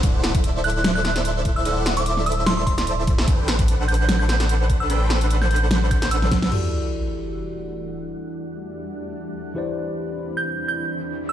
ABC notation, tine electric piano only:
X:1
M:4/4
L:1/8
Q:"Swing 16ths" 1/4=148
K:Em
V:1 name="Tine electric piano"
z8 | z8 | z8 | z8 |
[E,EFGAd]8- | [E,EFGAd]6- [E,EFGAd] [E,EGBcd]- | [E,EGBcd]8 |]